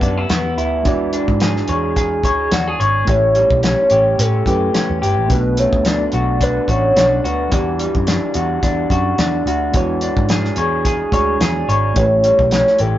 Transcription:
Already playing: C#3 G3 B3 E4 G4 C#5
0.01 F#2 D4, kick, closed hi-hat
0.17 E4
0.30 E2 B3, snare, closed hi-hat
0.57 D2 E4, closed hi-hat
0.83 E2 E3 G#3 D4 F#4, kick, closed hi-hat
0.88 D5
1.13 D4, closed hi-hat
1.28 G#2, kick
1.40 G#4, snare, closed hi-hat
1.57 snare
1.68 E2 G#4 C#5, closed hi-hat
1.96 G#4, kick, closed hi-hat
2.24 D2 C#5, kick, closed hi-hat
2.51 E2 F#4 D5, snare, closed hi-hat
2.67 G#4
2.80 G#1 C#5, closed hi-hat
3.05 A1 A2 A3 E4 G4, kick, closed hi-hat
3.10 C#5
3.35 G3, closed hi-hat
3.50 B1, kick
3.63 C#4 C#5, snare, closed hi-hat
3.90 A1 G4, closed hi-hat
4.19 A2 C#4 A4, closed hi-hat
4.46 F#2 A3 E4 G4 B4, kick, closed hi-hat
4.74 C#4, snare, closed hi-hat
4.90 E2
5.02 G1 G4, closed hi-hat
5.17 A1
5.27 B1 B2 A3 D4 F#4, kick, closed hi-hat
5.32 B4
5.57 A3 C#5, closed hi-hat
5.73 D2, kick
5.85 D4 D5, snare, closed hi-hat
6.12 B1 F#4 D5, closed hi-hat
6.41 D4 B4, kick, closed hi-hat
6.68 A1 F#4 C#5, kick, closed hi-hat
6.96 B1 D4, snare, closed hi-hat
7.24 D2 F#4 B4, closed hi-hat
7.49 E2 E3 G3 E4 F#5, kick, closed hi-hat
7.54 G4 D5
7.79 G3, closed hi-hat
7.95 F#2, kick
8.07 D4, snare, closed hi-hat
8.34 E2 F#4, closed hi-hat
8.63 E2 D4, kick, closed hi-hat
8.90 F#2 F#4, kick, closed hi-hat
9.18 E2 D4, snare, closed hi-hat
9.46 D2 F#4, closed hi-hat
9.72 E2 E3 G#3 D4 F#4, kick, closed hi-hat
9.77 C#5
10.01 D4, closed hi-hat
10.17 G#2, kick
10.29 G#4, snare, closed hi-hat
10.45 snare
10.56 E2 G#4 C#5, closed hi-hat
10.85 G#4, kick, closed hi-hat
11.11 D2 G#3 D4 F#4 C#5 D5, kick, closed hi-hat
11.40 E2 G#4 D5, snare, closed hi-hat
11.68 G#1 C#5, closed hi-hat
11.94 A1 A2 A3 E4 G4 C#5, kick, closed hi-hat
11.99 B4
12.05 C#5
12.24 G3, closed hi-hat
12.39 B1, kick
12.51 C#4 C#5, snare, closed hi-hat
12.67 snare
12.79 A1 G4 A4, closed hi-hat

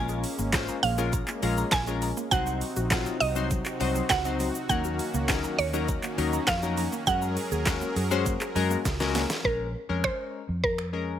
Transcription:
Already playing: A#1 G#3 A#3 C#4 F4 A#4 G#5
0.09 G#4, shaker
0.24 open hi-hat, shaker
0.39 G#1 A#3, shaker
0.53 G#3 C#4 F4 G#4 C5, kick, snare, clap, closed hi-hat, shaker
0.68 A#5, shaker
0.83 A#1 A#3 F5, open hi-hat, shaker
0.98 G#3 C#4 F4 G#4 A#4, shaker
1.13 A#5, kick, closed hi-hat, shaker
1.28 A#3, clap, shaker
1.42 A#1 G#3 C#4 F4 G#4 A#4, open hi-hat, shaker
1.57 A#5, shaker
1.71 A#1 G#5, kick, snare, clap, closed hi-hat, shaker
1.87 G#3 C#4 F4 G#4 A#4, shaker
2.02 A#5, open hi-hat, shaker
2.17 A#3, shaker
2.31 C2 C3 F#3 C4 D#4 F#4 C5 F#5, kick, closed hi-hat, shaker
2.46 F#5, shaker
2.61 open hi-hat, shaker
2.76 A#1 F#4, shaker
2.90 F#3 C4 D#4 F4 F#5, kick, snare, clap, closed hi-hat, shaker
3.06 F#3, shaker
3.20 C2 F#4 D#5, open hi-hat, shaker
3.35 F#3 C4 D#4 C5, shaker
3.51 F#3, kick, closed hi-hat, shaker
3.65 F#4, clap, shaker
3.80 C2 F#3 C4 D#4 C5 F#5, open hi-hat, shaker
3.95 F#3, shaker
4.09 C#2 F#4 F#5, kick, snare, clap, closed hi-hat, shaker
4.25 F#3 C4 D#4 C5 F#5, shaker
4.40 F#3, open hi-hat, shaker
4.55 shaker
4.69 D#2 D#3 F#3 A#3 C#4 D#4 A#4 F#5, kick, closed hi-hat, shaker
4.84 F#4, shaker
4.99 open hi-hat, shaker
5.14 C#2 A#3, shaker
5.28 F#3 C#4 D#4 F#4 A#4, kick, snare, clap, closed hi-hat, shaker
5.44 A#5, shaker
5.59 D#2 A#3 C#5, open hi-hat, shaker
5.73 F#3 C#4 D#4 F#4 A#4, shaker
5.88 A#5, kick, closed hi-hat, shaker
6.03 A#3, clap, shaker
6.18 D#2 F#3 C#4 D#4 F#4 A#4, open hi-hat, shaker
6.33 A#5, shaker
6.47 F2 F5, kick, snare, clap, closed hi-hat, shaker
6.62 F#3 C#4 D#4 F#4 A#4, shaker
6.77 A#5, open hi-hat, shaker
6.92 A#3, shaker
7.07 F#2 F#3 G#3 C#4 F#4 G#4 A#4 F#5, kick, closed hi-hat, shaker
7.22 A#5, shaker
7.37 open hi-hat, shaker
7.51 D#2 G#4, shaker
7.66 G#3 C#4 F#4 A#4 A#5, kick, snare, clap, closed hi-hat, shaker
7.81 A#3, shaker
7.96 F#2 G#4, open hi-hat, shaker
8.11 G#3 C#4 F#4 C5, shaker
8.26 A#3, kick, closed hi-hat, shaker
8.41 G#4, clap, shaker
8.55 F#2 G#3 C#4 F#4 A#4 A#5, open hi-hat, shaker
8.70 A#3, shaker
8.85 C#2 G#4, kick, snare, closed hi-hat, shaker
9.00 G#3 C#4 F#4 A#4 A#5, snare, shaker
9.15 A#3, snare, open hi-hat, shaker
9.30 snare, shaker
9.44 A#1 G#3 C#4 A#4, kick
9.89 F2 G#3 C#4 A#4
10.04 C5, finger snap, kick
10.49 F2
10.64 A#4, kick
10.78 finger snap
10.93 G#3 C#4 A#4

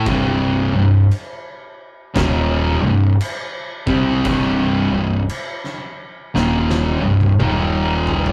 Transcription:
0.06 C1 C2 G2 C3, kick, crash
0.73 C1 C2 G2
1.11 crash
2.15 D#1 D#2 A#2 D#3, kick, snare, crash
2.82 C1 C2 G2
3.21 crash
3.87 C2 C3 G3 C4, kick
4.25 C1 C2 G2 C3, kick, crash
4.91 C1 C2 G2
5.29 crash
5.64 snare
6.34 D#1 D#2 A#2 D#3, snare
6.70 snare
7.01 C1 C2 G2
7.21 high tom
7.39 D#1 D#2 A#2 D#3, mid tom
8.07 floor tom
8.26 floor tom

